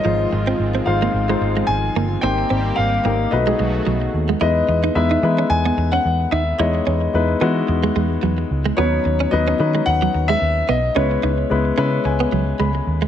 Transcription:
Already playing: analog synth pad D#3 F3 F4, grand piano D#5
0.04 picked electric bass G#1, clean electric guitar F3, grand piano G#3 D#4 F4 C5, analog synth pad G#3 C4
0.32 picked electric bass G#1, muted clean electric guitar stroke
0.47 clean electric guitar C4
0.59 picked electric bass G#1
0.75 clean electric guitar C4
0.86 picked electric bass G#1, grand piano G#3 D#4 F4 C5 F5, muted clean electric guitar stroke
1.02 clean electric guitar A#3
1.14 picked electric bass G#1
1.28 grand piano G#3 D#4 F4 C5, clean electric guitar G#3
1.41 picked electric bass G#1, muted clean electric guitar stroke
1.57 clean electric guitar G#3
1.67 picked electric bass G#1, grand piano G#5
1.96 picked electric bass G1, clean electric guitar A#3
2.21 picked electric bass G#1, analog synth pad G3 A#3 C4 G4, grand piano A#3 D#4 G4 C5 G5, clean electric guitar C4
2.38 muted clean electric guitar stroke
2.50 picked electric bass G#1, clean electric guitar C4
2.76 picked electric bass G#1, grand piano F5
3.05 picked electric bass G#1, clean electric guitar A#3, grand piano A#3 D#4 G4 A#4
3.31 picked electric bass B1, analog synth pad F#3 A3 B3 F#4, grand piano A3 D#4 F#4 B4 D#5, muted clean electric guitar stroke
3.47 clean electric guitar G#3, grand piano A3 D#4 F#4 G#4
3.59 picked electric bass B1, clean electric guitar G#3
3.87 picked electric bass B1, clean electric guitar F#3
4.02 muted clean electric guitar stroke
4.14 picked electric bass D#2
4.29 clean electric guitar G#3
4.41 picked electric bass E2, grand piano G#3 B3 D#4 E4 B4 D#5, clean electric guitar E4
4.69 picked electric bass E2, muted clean electric guitar stroke
4.84 clean electric guitar D#4
4.95 picked electric bass E2, grand piano G#3 B3 D#4 E4 B4 E5
5.11 clean electric guitar D#4
5.23 picked electric bass E3, grand piano G#3 B3 D#4 E4 B4, muted clean electric guitar stroke
5.38 clean electric guitar C#4
5.50 picked electric bass E2, grand piano G#5
5.65 clean electric guitar B3
5.78 picked electric bass E2, muted clean electric guitar stroke
5.92 clean electric guitar C#4, grand piano F#5
6.05 picked electric bass E2
6.31 picked electric bass D#2, clean electric guitar D#4, grand piano E5
6.58 picked electric bass E2, grand piano G#3 B3 D#4 E4 C#5 D#5, clean electric guitar E4
6.75 muted clean electric guitar stroke
6.87 picked electric bass E2, clean electric guitar C#4
7.14 picked electric bass E2, grand piano G#3 B3 D#4 E4 B4
7.41 picked electric bass E3, grand piano G#3 B3 D#4 E4 F#4, clean electric guitar B3
7.68 picked electric bass E2, muted clean electric guitar stroke
7.83 clean electric guitar G#3
7.96 picked electric bass E2, clean electric guitar G#3
8.23 picked electric bass E2, clean electric guitar F#3
8.38 muted clean electric guitar stroke
8.51 picked electric bass C#2
8.65 clean electric guitar G#3
8.77 picked electric bass D#2, grand piano F#3 B3 C#4 D#4 B4 C#5, clean electric guitar B3
9.05 picked electric bass D#2, muted clean electric guitar stroke
9.20 clean electric guitar C#4
9.31 picked electric bass D#2, grand piano F#3 B3 C#4 D#4 B4 D#5
9.48 clean electric guitar C#4
9.59 picked electric bass D#3, grand piano F#3 B3 C#4 D#4 B4, muted clean electric guitar stroke
9.75 clean electric guitar G#3
9.86 picked electric bass D#2, grand piano F#5
10.02 clean electric guitar F#3
10.15 picked electric bass D#2, muted clean electric guitar stroke
10.28 clean electric guitar G#3, grand piano E5
10.42 picked electric bass D#2
10.68 picked electric bass B1, clean electric guitar B3, grand piano D#5
10.95 picked electric bass C#2, grand piano G#3 B3 C#4 E4 B4 C#5, clean electric guitar C#4
11.11 muted clean electric guitar stroke
11.23 picked electric bass C#2, clean electric guitar D#4
11.50 picked electric bass C#2, grand piano G#3 B3 C#4 E4 B4
11.77 picked electric bass C#3, grand piano G#3 B3 C#4 E4 B4 E5, clean electric guitar C#4
12.05 picked electric bass C#2, grand piano G#5, muted clean electric guitar stroke
12.20 clean electric guitar B3
12.32 picked electric bass C#2, clean electric guitar F#3
12.60 picked electric bass C#2, clean electric guitar G#3, grand piano B5
12.75 muted clean electric guitar stroke
12.87 picked electric bass D#2
13.02 clean electric guitar G#3

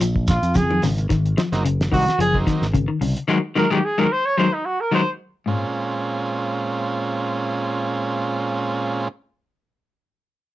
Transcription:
0.01 fingered electric bass A#1, clean electric guitar F3, closed hi-hat, high conga, shekere
0.16 kick
0.27 trumpet F4, kick, snare, closed hi-hat, high conga, shekere
0.42 fingered electric bass F2, closed hi-hat, shekere
0.55 clean electric guitar C#3, trumpet G#4, kick, closed hi-hat, high conga, shekere
0.70 clean electric guitar D#3, high conga
0.82 fingered electric bass G#1, clean electric guitar C#3, snare, open hi-hat, low conga, shekere
0.98 closed hi-hat, shekere
1.09 fingered electric bass G#1, clean electric guitar D#3, kick, snare, closed hi-hat
1.25 closed hi-hat
1.37 clean electric guitar F3, transistor combo organ C4 D#4, snare, closed hi-hat
1.52 fingered electric bass F#1, transistor combo organ F#3 A#3 C4 D#4, snare, closed hi-hat
1.64 clean electric guitar C#3, closed hi-hat
1.81 snare, closed hi-hat
1.91 fingered electric bass C2, clean electric guitar D#3, transistor combo organ F#3 A#3 C4 D#4, trumpet F#4, kick, open hi-hat
2.08 snare, closed hi-hat
2.18 fingered electric bass F#1, clean electric guitar F3, trumpet G#4, closed hi-hat
2.34 transistor combo organ F#3 A#3 C4 D#4, kick
2.47 clean electric guitar D#3, kick, snare, closed hi-hat
2.61 fingered electric bass G#1, snare
2.73 clean electric guitar C#3, kick, closed hi-hat
2.88 clean electric guitar D#3
3.01 fingered electric bass C2, clean electric guitar C#3, open hi-hat
3.17 closed hi-hat
3.28 clean electric guitar D#3 F#3 G#3, transistor combo organ G#3 C4 D#4
3.55 clean electric guitar D#3 F#3 G#3, transistor combo organ G#3 C4 D#4, trumpet A#4
3.70 clean electric guitar D#3 F#3 G#3, transistor combo organ G#3 C4 D#4, trumpet G4
3.84 trumpet G#4
3.98 clean electric guitar D#3 F#3 G#3, transistor combo organ G#3 C4 D#4, trumpet A#4
4.12 trumpet C5
4.25 trumpet C#5
4.38 clean electric guitar D#3 F#3 G#3, transistor combo organ G#3 C4 D#4, trumpet C5
4.54 trumpet D#4
4.65 trumpet F#4
4.81 trumpet A#4
4.91 clean electric guitar D#3 F#3 G#3, transistor combo organ G#3 C4 D#4, trumpet C5
5.46 clean electric guitar G#2, transistor combo organ A#2 G#3 C4 C#4 F4

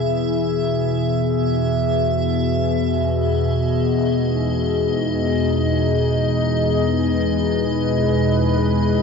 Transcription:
Already playing: synth drone E2 B2, analog synth pad E3 B3 E4 G#4, ambient pad E5
2.74 analog synth pad E2, ambient pad D#5
3.71 analog synth pad D#4
3.91 analog synth pad G#3
6.28 analog synth pad B4

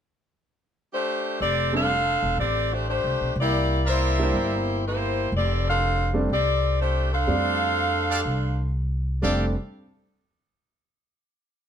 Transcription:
0.93 saxophone section A3 D4 G4 C5
1.40 upright bass F1, saxophone section C4 G4 A4 D5
1.73 grand piano G3 A3 C4 D4, saxophone section D4 A4 C5 F5
2.22 upright bass E1
2.38 upright bass A1, saxophone section C4 G4 A4 D5
2.72 saxophone section A3 D4 G4 C5
2.88 saxophone section A3 D4 G4 C5
3.04 upright bass C2
3.21 upright bass B1
3.36 upright bass C2, saxophone section A#3 E4 D5
3.40 saxophone section G4
3.86 saxophone section A#3 E4 G4 C5, trumpet section A#4 C5 D5 E5
4.18 grand piano G3 A#3 D4 E4, saxophone section A#3 G4 C5
4.22 saxophone section E4
4.34 upright bass G1
4.86 saxophone section A#3 E4 G4 C5
5.32 upright bass F1
5.37 saxophone section C4 G4 A4 D5
5.69 saxophone section D4 A4 C5 F5
6.13 grand piano G3 A3 C4 D4
6.30 upright bass C2, saxophone section C4 G4 A4 D5
6.81 saxophone section A3 D4 G4 C5
7.13 saxophone section D4 A4 C5 F5
7.27 upright bass F2, grand piano G3 A3 C4 D4
8.09 trumpet section G4 A4 D5 F5
8.25 upright bass C2
9.22 upright bass F1, grand piano G3 A3 C4 D4, trumpet section G4 A4 D5 F5

